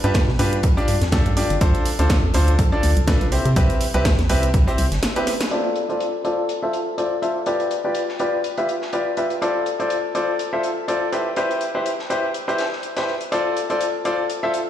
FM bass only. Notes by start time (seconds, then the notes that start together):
0.04 G2
0.28 B2
0.39 G2
0.88 G2
1.02 F2
1.26 G2
1.50 G1
1.61 D2
1.99 D2
2.23 F2
2.34 D2
2.83 D2
2.97 C2
3.21 C2
3.45 C3
3.56 C2
3.94 C2
4.19 E2
4.30 C2
4.78 C2
4.92 G1